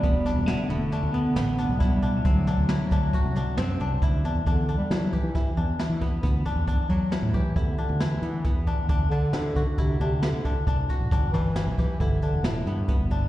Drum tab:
HH |xxxxxxxxxx|xxxxxxxxxx|xxxxxxxxxx|xxxxxxxxxx|
SD |-oo-o-ooo-|-ooo-oo---|--o-o-o---|--o---o---|
BD |o-------o-|o--oo---o-|o--oo--ooo|o--oo---oo|

HH |xxxxxxxxxx|xxxxxxxxxx|
SD |--o---o---|-oo---o---|
BD |o--oo--ooo|o--oo---oo|